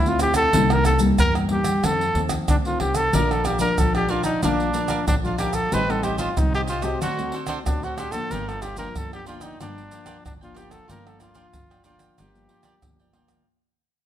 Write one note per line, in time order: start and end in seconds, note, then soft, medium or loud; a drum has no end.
0.00 0.44 D2 medium
0.00 0.51 C3 medium
0.06 0.49 A3 medium
0.06 0.49 C4 medium
0.06 0.50 E4 medium
0.06 0.21 F4 medium
0.06 pandeiro soft
0.06 maracas soft
0.19 0.35 G4 medium
0.19 pandeiro medium
0.19 tamborim medium
0.19 maracas medium
0.19 surdo soft
0.34 0.74 A4 medium
0.34 pandeiro medium
0.34 tamborim medium
0.34 maracas medium
0.34 surdo soft
0.53 1.09 C2 loud
0.53 1.15 C3 medium
0.53 0.97 G3 medium
0.53 0.97 A#3 medium
0.53 0.98 D#4 medium
0.53 pandeiro medium
0.53 maracas medium
0.53 surdo medium
0.70 0.85 A#4 medium
0.70 pandeiro soft
0.70 tamborim medium
0.70 maracas soft
0.85 1.01 A4 medium
0.85 pandeiro medium
0.85 tamborim medium
0.85 maracas medium
0.85 surdo soft
0.99 1.44 G3 medium
0.99 1.45 A#3 medium
0.99 1.45 D#4 medium
0.99 pandeiro medium
0.99 maracas medium
0.99 surdo soft
1.18 1.74 E2 medium
1.18 1.80 G2 medium
1.18 1.34 A#4 loud
1.18 pandeiro medium
1.18 tamborim medium
1.18 maracas medium
1.18 surdo medium
1.35 pandeiro soft
1.35 tamborim medium
1.35 maracas soft
1.49 1.70 G3 soft
1.49 1.70 A#3 soft
1.49 1.70 D#4 soft
1.49 1.86 G4 medium
1.49 pandeiro medium
1.64 pandeiro medium
1.64 tamborim medium
1.64 maracas medium
1.84 2.11 F2 medium
1.84 2.46 F2 medium
1.84 2.03 D#3 medium
1.84 2.03 A3 medium
1.84 2.03 C4 medium
1.84 2.22 A4 loud
1.84 pandeiro medium
1.84 tamborim medium
1.84 maracas medium
1.84 surdo medium
2.01 pandeiro soft
2.01 maracas soft
2.15 2.45 D#2 medium
2.15 2.46 D#3 medium
2.15 2.46 A3 medium
2.15 2.47 C4 medium
2.15 pandeiro medium
2.29 pandeiro medium
2.29 tamborim medium
2.29 maracas medium
2.29 surdo soft
2.48 2.78 D2 medium
2.48 3.11 C3 medium
2.48 2.56 D4 medium
2.48 pandeiro medium
2.48 tamborim medium
2.48 maracas medium
2.48 surdo loud
2.65 3.09 D#3 medium
2.65 3.09 A3 medium
2.65 3.09 C4 medium
2.65 2.80 F4 medium
2.65 pandeiro soft
2.65 maracas soft
2.80 3.10 C2 medium
2.80 2.97 G4 medium
2.80 pandeiro medium
2.80 tamborim medium
2.80 surdo soft
2.95 3.15 A4 medium
2.95 pandeiro medium
2.95 tamborim medium
2.95 maracas medium
2.95 surdo soft
3.13 3.69 A#1 loud
3.13 3.75 A#2 medium
3.13 3.44 F3 medium
3.13 3.44 D4 medium
3.13 3.43 A#4 medium
3.13 3.33 A#4 medium
3.13 3.44 D5 medium
3.13 3.45 F5 medium
3.13 3.45 A5 medium
3.13 pandeiro medium
3.13 maracas medium
3.13 surdo medium
3.31 3.47 A4 medium
3.31 pandeiro soft
3.31 tamborim medium
3.31 maracas soft
3.44 3.60 G4 medium
3.44 3.59 A#4 soft
3.44 3.59 D5 soft
3.44 3.59 F5 medium
3.44 3.60 A5 medium
3.44 pandeiro medium
3.44 tamborim medium
3.44 maracas medium
3.44 surdo soft
3.59 4.04 F3 medium
3.59 4.04 A3 medium
3.59 4.05 D4 medium
3.59 3.70 A#4 medium
3.59 3.80 A#4 medium
3.59 3.70 D5 medium
3.59 3.70 F5 medium
3.59 3.70 A5 medium
3.59 pandeiro medium
3.59 maracas medium
3.59 surdo soft
3.78 4.33 A#1 medium
3.78 4.40 F2 medium
3.78 3.95 A4 medium
3.78 pandeiro medium
3.78 tamborim medium
3.78 maracas medium
3.78 surdo medium
3.95 4.12 G4 medium
3.95 4.08 D5 soft
3.95 4.09 F5 soft
3.95 4.10 A5 soft
3.95 pandeiro soft
3.95 tamborim medium
3.95 maracas soft
4.08 4.37 F3 soft
4.08 4.37 A3 soft
4.08 4.37 D4 soft
4.08 4.23 F4 medium
4.08 4.24 A#4 medium
4.08 4.25 D5 medium
4.08 4.24 F5 medium
4.08 4.23 A5 medium
4.08 pandeiro medium
4.24 4.40 D#4 medium
4.24 4.42 D5 soft
4.24 4.41 F5 soft
4.24 4.40 A5 soft
4.24 pandeiro medium
4.24 tamborim medium
4.24 maracas medium
4.43 4.71 A#1 loud
4.43 5.04 A#2 medium
4.43 4.70 F3 medium
4.43 4.70 A3 medium
4.43 4.70 D4 medium
4.43 5.04 D4 medium
4.43 4.72 A#4 medium
4.43 4.73 D5 medium
4.43 4.74 F5 medium
4.43 4.75 A5 medium
4.43 pandeiro medium
4.43 tamborim medium
4.43 maracas medium
4.43 surdo medium
4.60 pandeiro soft
4.60 maracas soft
4.73 5.05 F3 soft
4.73 5.05 A3 medium
4.73 5.05 D4 medium
4.73 4.88 A#4 soft
4.73 4.88 D5 medium
4.73 4.89 F5 soft
4.73 4.89 A5 medium
4.73 pandeiro medium
4.73 maracas medium
4.88 4.99 A#4 medium
4.88 5.00 D5 medium
4.88 5.00 F5 medium
4.88 5.00 A5 medium
4.88 pandeiro medium
4.88 tamborim medium
4.88 maracas medium
4.88 surdo soft
5.06 5.63 A#1 medium
5.06 5.68 F2 medium
5.06 5.15 D4 medium
5.06 pandeiro medium
5.06 tamborim medium
5.06 maracas medium
5.06 surdo loud
5.24 5.67 F3 medium
5.24 5.67 A3 medium
5.24 5.68 D4 medium
5.24 5.38 F4 medium
5.24 5.38 D5 soft
5.24 5.39 F5 soft
5.24 5.39 A5 soft
5.24 pandeiro soft
5.24 maracas soft
5.38 5.55 G4 medium
5.38 5.70 A#4 medium
5.38 5.71 D5 medium
5.38 5.71 F5 medium
5.38 5.71 A5 medium
5.38 pandeiro medium
5.38 tamborim medium
5.38 maracas medium
5.38 surdo soft
5.53 5.75 A4 medium
5.53 pandeiro medium
5.53 tamborim medium
5.53 maracas medium
5.53 surdo soft
5.71 6.27 A1 loud
5.71 6.33 A2 medium
5.71 5.83 G3 medium
5.71 5.83 C4 medium
5.71 5.83 D#4 medium
5.71 6.02 G4 medium
5.71 5.92 B4 medium
5.71 6.03 C5 medium
5.71 6.04 D#5 medium
5.71 6.05 A5 medium
5.71 pandeiro medium
5.71 maracas medium
5.71 surdo medium
5.89 6.32 G3 soft
5.89 6.32 C4 soft
5.89 6.33 D#4 medium
5.89 6.05 A4 medium
5.89 pandeiro soft
5.89 tamborim medium
5.89 maracas soft
6.03 6.18 G4 medium
6.03 6.17 G4 medium
6.03 6.18 C5 medium
6.03 6.18 D#5 medium
6.03 6.19 A5 medium
6.03 pandeiro medium
6.03 tamborim medium
6.03 maracas medium
6.03 surdo soft
6.18 6.39 F4 medium
6.18 6.29 G4 medium
6.18 6.29 C5 medium
6.18 6.29 D#5 medium
6.18 6.29 A5 medium
6.18 pandeiro medium
6.18 maracas medium
6.18 surdo soft
6.37 6.92 C2 medium
6.37 6.98 A2 medium
6.37 6.67 G3 medium
6.37 6.67 C4 medium
6.37 6.68 D#4 medium
6.37 6.54 D#4 medium
6.37 pandeiro medium
6.37 tamborim medium
6.37 maracas medium
6.37 surdo loud
6.54 6.62 G4 medium
6.54 6.68 C5 soft
6.54 6.69 D#5 soft
6.54 6.69 A5 soft
6.54 pandeiro soft
6.54 tamborim medium
6.54 maracas soft
6.68 6.84 F4 medium
6.68 6.84 G4 medium
6.68 6.84 C5 medium
6.68 6.83 D#5 medium
6.68 6.83 A5 medium
6.68 pandeiro medium
6.68 maracas medium
6.82 7.11 A3 medium
6.82 7.11 C4 medium
6.82 7.12 F#4 medium
6.82 7.00 G4 medium
6.82 7.00 C5 soft
6.82 7.00 D#5 soft
6.82 7.00 A5 soft
6.82 pandeiro medium
6.82 tamborim medium
6.82 maracas medium
7.01 7.29 D2 medium
7.01 7.63 D3 medium
7.01 7.32 D4 medium
7.01 7.36 F#4 medium
7.01 7.33 A4 medium
7.01 7.33 C5 medium
7.01 7.34 F#5 medium
7.01 pandeiro medium
7.01 tamborim medium
7.01 maracas medium
7.01 surdo medium
7.19 7.61 A3 medium
7.19 7.62 C4 medium
7.19 7.62 F#4 medium
7.19 pandeiro soft
7.19 maracas soft
7.32 7.47 D4 soft
7.32 7.47 A4 medium
7.32 7.48 C5 medium
7.32 7.48 F#5 medium
7.32 pandeiro medium
7.47 7.58 D4 medium
7.47 7.58 A4 medium
7.47 7.58 C5 medium
7.47 7.59 F#5 medium
7.47 pandeiro medium
7.47 tamborim medium
7.47 maracas medium
7.47 surdo soft
7.66 8.22 D2 medium
7.66 8.28 A2 medium
7.66 8.09 A3 medium
7.66 8.10 C4 medium
7.66 7.85 D4 medium
7.66 8.10 F#4 medium
7.66 pandeiro medium
7.66 tamborim medium
7.66 maracas medium
7.66 surdo loud
7.83 7.99 F#4 medium
7.83 7.97 A4 soft
7.83 7.98 C5 soft
7.83 7.98 F#5 medium
7.83 pandeiro soft
7.83 maracas soft
7.97 8.29 D4 medium
7.97 8.13 G4 medium
7.97 8.29 A4 medium
7.97 8.30 C5 medium
7.97 8.30 F#5 medium
7.97 pandeiro medium
7.97 tamborim medium
7.97 maracas medium
8.11 8.41 F3 medium
8.11 8.41 A#3 medium
8.11 8.41 D4 medium
8.11 8.32 A4 loud
8.11 pandeiro medium
8.11 tamborim medium
8.11 maracas medium
8.11 surdo soft
8.31 8.86 G1 loud
8.31 8.92 G2 medium
8.31 8.61 F4 medium
8.31 8.50 A#4 medium
8.31 8.62 A#4 medium
8.31 8.62 D5 medium
8.31 8.63 G5 medium
8.31 pandeiro medium
8.31 maracas medium
8.31 surdo medium
8.48 8.64 A4 medium
8.48 pandeiro soft
8.48 tamborim medium
8.48 maracas soft
8.62 8.77 F4 soft
8.62 8.77 G4 medium
8.62 8.77 A#4 soft
8.62 8.78 D5 medium
8.62 8.78 G5 medium
8.62 pandeiro medium
8.62 tamborim medium
8.62 maracas medium
8.62 surdo soft
8.77 9.21 F3 medium
8.77 9.22 A#3 medium
8.77 9.22 D4 medium
8.77 8.88 F4 medium
8.77 8.99 A#4 loud
8.77 8.88 A#4 medium
8.77 8.88 D5 medium
8.77 8.88 G5 medium
8.77 pandeiro medium
8.77 maracas medium
8.77 surdo soft
8.96 9.51 G1 medium
8.96 9.57 D3 medium
8.96 9.12 A4 medium
8.96 pandeiro medium
8.96 tamborim medium
8.96 maracas medium
8.96 surdo loud
9.13 9.27 G4 medium
9.13 9.26 A#4 soft
9.13 9.27 D5 soft
9.13 9.27 G5 soft
9.13 pandeiro soft
9.13 tamborim medium
9.13 maracas soft
9.26 9.54 F3 medium
9.26 9.54 A#3 medium
9.26 9.55 D4 medium
9.26 9.42 F4 medium
9.26 9.44 F4 medium
9.26 9.42 A#4 medium
9.26 9.42 D5 medium
9.26 9.41 G5 medium
9.26 pandeiro medium
9.26 maracas medium
9.41 9.59 D#4 medium
9.41 9.59 A#4 soft
9.41 9.58 D5 soft
9.41 9.58 G5 medium
9.41 pandeiro medium
9.41 tamborim medium
9.41 maracas medium
9.60 9.88 G1 loud
9.60 10.21 G2 medium
9.60 9.79 F3 medium
9.60 9.79 A#3 medium
9.60 9.79 D4 medium
9.60 10.21 D4 medium
9.60 9.90 F4 medium
9.60 9.91 A#4 medium
9.60 9.91 D5 medium
9.60 9.92 G5 medium
9.60 pandeiro medium
9.60 tamborim medium
9.60 maracas medium
9.60 surdo medium
9.78 pandeiro soft
9.78 maracas soft
9.91 10.35 F3 medium
9.91 10.35 A#3 medium
9.91 10.36 D4 medium
9.91 10.05 F4 soft
9.91 10.05 A#4 soft
9.91 10.05 D5 medium
9.91 10.05 G5 medium
9.91 pandeiro medium
9.91 maracas medium
10.06 10.16 F4 medium
10.06 10.16 A#4 medium
10.06 10.17 D5 medium
10.06 10.16 G5 medium
10.06 pandeiro medium
10.06 tamborim medium
10.06 maracas medium
10.06 surdo soft
10.25 10.80 G1 medium
10.25 10.86 D3 medium
10.25 10.33 D4 medium
10.25 pandeiro medium
10.25 tamborim medium
10.25 maracas medium
10.25 surdo loud
10.41 10.85 F3 medium
10.41 10.85 A#3 medium
10.41 10.85 D4 medium
10.41 10.59 F4 medium
10.41 10.54 A#4 soft
10.41 10.55 D5 medium
10.41 10.55 G5 soft
10.41 pandeiro soft
10.41 maracas soft
10.54 10.87 F4 medium
10.54 10.73 G4 medium
10.54 10.87 A#4 medium
10.54 10.87 D5 medium
10.54 10.88 G5 medium
10.54 pandeiro medium
10.54 tamborim medium
10.54 maracas medium
10.71 10.88 A4 medium
10.71 pandeiro medium
10.71 tamborim medium
10.71 maracas medium
10.71 surdo soft
10.88 11.44 G1 loud
10.88 11.51 G2 medium
10.88 11.33 F3 medium
10.88 11.33 A#3 medium
10.88 11.33 D4 medium
10.88 11.18 F4 medium
10.88 11.19 A#4 medium
10.88 11.09 A#4 medium
10.88 11.20 D5 medium
10.88 11.20 G5 medium
10.88 pandeiro medium
10.88 maracas medium
10.88 surdo medium
11.07 11.21 A4 medium
11.07 pandeiro soft
11.07 tamborim medium
11.07 maracas soft
11.19 11.33 F4 soft
11.19 11.82 F4 medium
11.19 11.34 A#4 medium
11.19 11.34 D5 medium
11.19 11.34 G5 medium
11.19 pandeiro medium
11.19 tamborim medium
11.19 maracas medium
11.19 surdo soft
11.35 11.80 F3 medium
11.35 11.80 A#3 medium
11.35 11.80 D4 medium
11.35 11.45 F4 medium
11.35 11.45 A#4 medium
11.35 11.46 D5 medium
11.35 11.46 G5 medium
11.35 pandeiro medium
11.35 maracas medium
11.35 surdo soft
11.53 12.09 G1 medium
11.53 12.15 D3 medium
11.53 pandeiro medium
11.53 tamborim medium
11.53 maracas medium
11.53 surdo loud
11.70 11.84 A#4 soft
11.70 11.84 D5 soft
11.70 11.85 G5 soft
11.70 pandeiro soft
11.70 tamborim medium
11.70 maracas soft
11.84 12.28 F3 soft
11.84 12.28 A#3 medium
11.84 12.29 D4 medium
11.84 12.00 F4 medium
11.84 12.21 F4 medium
11.84 12.00 A#4 medium
11.84 11.99 D5 medium
11.84 11.98 G5 medium
11.84 pandeiro medium
11.84 maracas medium
11.99 12.16 A#4 soft
11.99 12.16 D5 soft
11.99 12.15 G5 soft
11.99 pandeiro medium
11.99 tamborim medium
11.99 maracas medium
12.18 12.46 G1 loud
12.18 12.79 G2 medium
12.18 12.48 F4 medium
12.18 13.15 G4 medium
12.18 12.48 A#4 medium
12.18 12.49 D5 medium
12.18 12.50 G5 medium
12.18 pandeiro medium
12.18 tamborim medium
12.18 maracas medium
12.18 surdo medium
12.34 12.77 F3 medium
12.34 12.78 A#3 medium
12.34 12.78 D4 medium
12.34 pandeiro soft
12.34 maracas soft
12.49 12.62 F4 soft
12.49 12.63 A#4 medium
12.49 12.63 D5 medium
12.49 12.64 G5 medium
12.49 pandeiro medium
12.63 12.74 F4 medium
12.63 12.74 A#4 medium
12.63 12.75 D5 medium
12.63 12.75 G5 medium
12.63 pandeiro medium
12.63 tamborim medium
12.63 maracas medium
12.63 surdo soft
12.82 13.37 G1 medium
12.82 13.44 D3 medium
12.82 13.10 F3 medium
12.82 13.09 A#3 medium
12.82 13.10 D4 medium
12.82 pandeiro medium
12.82 tamborim medium
12.82 maracas medium
12.82 surdo loud
12.99 13.12 A#4 soft
12.99 13.13 D5 soft
12.99 13.14 G5 soft
12.99 pandeiro soft
12.99 maracas soft
13.13 13.41 F3 medium
13.13 13.41 A#3 medium
13.13 13.41 D4 medium
13.13 13.45 F4 medium
13.13 13.45 A#4 medium
13.13 13.46 D5 medium
13.13 13.46 G5 medium
13.13 pandeiro medium
13.13 tamborim medium
13.28 pandeiro medium
13.28 tamborim medium
13.28 maracas medium
13.28 surdo soft